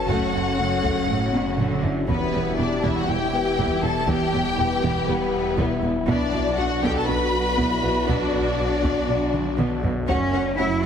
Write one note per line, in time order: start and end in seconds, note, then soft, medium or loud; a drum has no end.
0.00 2.10 F#1 medium
0.00 2.04 F#3 medium
0.00 0.55 C#4 soft
0.00 1.85 C#4 medium
0.00 2.04 C#4 medium
0.00 2.04 F#4 medium
0.00 0.55 C#5 soft
0.00 2.04 C#5 medium
0.00 1.83 E5 soft
0.08 0.16 F#1 medium
0.08 0.17 F#2 medium
0.08 0.23 F#3 medium
0.08 0.32 A3 medium
0.08 1.80 F#4 medium
0.08 1.84 A4 medium
0.08 1.83 F#5 medium
0.08 taiko medium
0.33 0.42 F#1 soft
0.33 0.41 F#2 soft
0.33 0.42 A3 soft
0.33 0.48 C#4 medium
0.58 0.67 F#1 soft
0.58 1.05 F#2 medium
0.58 0.67 A3 soft
0.58 0.74 C#4 medium
0.83 0.91 F#1 medium
0.83 0.99 F#3 medium
0.83 1.07 A3 medium
0.83 taiko medium
1.08 1.16 F#1 soft
1.08 1.33 A2 medium
1.08 1.17 A3 soft
1.08 1.24 A3 medium
1.33 1.46 B2 soft
1.33 taiko high medium
1.47 1.59 C#3 soft
1.58 1.66 F#1 medium
1.58 2.07 D3 medium
1.58 1.74 F#3 medium
1.58 1.82 A3 medium
1.58 taiko low-mid medium
1.83 1.91 F#1 soft
1.83 1.91 A3 soft
1.83 1.99 C#4 medium
1.83 3.30 E4 soft
1.83 3.29 E5 soft
1.83 taiko low medium
2.08 6.10 E1 medium
2.08 2.17 E1 medium
2.08 2.16 E2 medium
2.08 2.24 E3 medium
2.08 6.08 G3 medium
2.08 6.07 B3 medium
2.08 2.31 B3 medium
2.08 2.55 B3 medium
2.08 6.04 E4 medium
2.08 6.08 E4 medium
2.08 4.55 G4 medium
2.08 2.55 B4 medium
2.08 6.08 E5 medium
2.08 taiko medium
2.33 2.42 E1 soft
2.33 2.41 E2 soft
2.33 2.41 B3 soft
2.33 2.49 B3 medium
2.58 2.66 E1 soft
2.58 2.66 E2 soft
2.58 2.66 B3 soft
2.58 2.74 B3 medium
2.58 2.84 D4 medium
2.58 2.84 D5 medium
2.83 2.92 E1 medium
2.83 2.91 E2 medium
2.83 2.99 E3 medium
2.83 3.06 B3 medium
2.83 2.96 E4 medium
2.83 2.96 E5 medium
2.83 taiko medium
2.96 3.09 F#4 medium
2.96 3.09 F#5 medium
3.08 3.17 E1 soft
3.08 3.16 E2 soft
3.08 3.24 G3 medium
3.08 3.16 B3 soft
3.08 3.84 G4 medium
3.08 3.84 G5 medium
3.33 4.79 B3 soft
3.33 4.80 B4 medium
3.58 3.67 E1 medium
3.58 3.66 E2 medium
3.58 3.73 E3 medium
3.58 3.82 B3 medium
3.58 taiko medium
3.83 3.92 E1 medium
3.83 3.91 E2 soft
3.83 3.91 B3 medium
3.83 3.98 B3 medium
3.83 4.08 A4 medium
3.83 4.09 A5 medium
4.08 4.16 E1 medium
4.08 4.16 E2 medium
4.08 4.23 E3 medium
4.08 4.31 B3 medium
4.08 5.06 G4 medium
4.08 5.09 G5 loud
4.08 taiko medium
4.33 4.42 E1 medium
4.33 4.41 E2 medium
4.33 4.41 B3 medium
4.33 4.48 B3 medium
4.58 4.67 E1 medium
4.58 4.67 E2 medium
4.58 4.74 B3 medium
4.58 4.67 B3 medium
4.58 5.07 B4 medium
4.83 4.92 E1 medium
4.83 4.91 E2 medium
4.83 4.99 E3 medium
4.83 5.06 B3 medium
4.83 taiko medium
5.07 5.16 E1 medium
5.07 5.16 E2 medium
5.07 5.24 G3 medium
5.07 5.83 B3 medium
5.07 5.16 B3 medium
5.07 5.58 G4 medium
5.07 5.83 B4 medium
5.58 5.66 E1 medium
5.58 5.66 E2 medium
5.58 5.73 E3 medium
5.58 5.81 B3 medium
5.58 6.58 E4 medium
5.58 taiko medium
5.82 5.91 E1 medium
5.82 5.91 E2 soft
5.82 5.90 B3 medium
5.82 5.98 B3 medium
6.08 6.16 B1 medium
6.08 10.08 B1 medium
6.08 6.16 B2 medium
6.08 10.08 F#3 medium
6.08 6.23 B3 medium
6.08 10.04 B3 medium
6.08 6.32 B3 medium
6.08 6.55 D4 medium
6.08 10.07 F#4 medium
6.08 9.89 F#4 medium
6.08 10.08 D5 medium
6.08 6.55 D5 medium
6.08 taiko medium
6.33 6.41 B1 medium
6.33 6.41 B2 medium
6.33 6.42 B3 medium
6.33 6.48 F#4 medium
6.58 6.66 B1 medium
6.58 6.66 B2 medium
6.58 6.66 B3 medium
6.58 7.07 D4 medium
6.58 6.73 F#4 medium
6.58 6.83 F#4 medium
6.58 6.83 F#5 medium
6.83 6.91 B1 medium
6.83 6.91 B2 medium
6.83 7.07 B3 medium
6.83 6.98 B3 medium
6.83 6.96 G4 medium
6.83 8.30 A4 medium
6.83 6.96 G5 medium
6.83 taiko medium
6.96 7.08 A4 medium
6.96 7.09 A5 medium
7.08 7.17 B1 soft
7.08 7.16 B2 medium
7.08 7.16 B3 medium
7.08 7.23 D4 medium
7.08 7.58 F#4 medium
7.08 8.09 B4 medium
7.08 8.07 B5 loud
7.58 7.66 B1 medium
7.58 7.66 B2 medium
7.58 7.73 B3 medium
7.58 7.82 B3 medium
7.58 8.07 E4 medium
7.58 taiko medium
7.83 7.92 B1 soft
7.83 7.91 B2 soft
7.83 9.29 B3 soft
7.83 7.92 B3 medium
7.83 7.98 F#4 medium
7.83 9.29 B4 medium
8.08 8.17 B1 medium
8.08 8.16 B2 medium
8.08 8.23 B3 medium
8.08 8.32 B3 medium
8.08 9.84 D4 medium
8.08 9.80 D4 medium
8.08 9.83 D5 medium
8.08 taiko medium
8.33 8.42 B1 soft
8.33 8.41 B2 soft
8.33 8.41 B3 soft
8.33 8.48 F#4 medium
8.58 8.66 B1 soft
8.58 8.67 B2 soft
8.58 8.67 B3 soft
8.58 8.73 F#4 medium
8.83 8.91 B1 medium
8.83 8.92 B2 medium
8.83 8.98 B3 medium
8.83 9.07 B3 medium
8.83 taiko medium
9.08 9.17 B1 soft
9.08 9.17 B2 soft
9.08 9.17 B3 medium
9.08 9.23 D4 medium
9.34 taiko mid medium
9.58 9.66 B1 medium
9.58 9.66 B2 medium
9.58 9.73 B3 medium
9.58 9.82 B3 medium
9.58 taiko mid medium
9.83 9.92 B1 soft
9.83 9.92 B2 soft
9.83 9.92 B3 soft
9.83 9.98 F#4 medium
9.83 taiko low medium
10.08 10.86 F#1 medium
10.08 10.53 F#2 medium
10.08 10.23 F#3 medium
10.08 10.86 F#3 medium
10.08 10.16 A3 medium
10.08 10.55 C#4 medium
10.08 10.86 C#4 medium
10.08 10.55 C#4 medium
10.08 10.16 F#4 medium
10.08 10.86 F#4 medium
10.08 10.86 C#5 medium
10.08 10.16 C#5 medium
10.08 10.16 F#5 medium
10.08 taiko medium
10.33 10.42 A3 soft
10.33 10.48 C#4 medium
10.33 10.41 F#4 soft
10.33 10.42 C#5 medium
10.33 10.42 F#5 medium
10.58 10.86 F#2 medium
10.58 10.66 A3 medium
10.58 10.73 C#4 medium
10.58 10.84 E4 medium
10.58 10.66 F#4 medium
10.58 10.67 C#5 medium
10.58 10.67 F#5 soft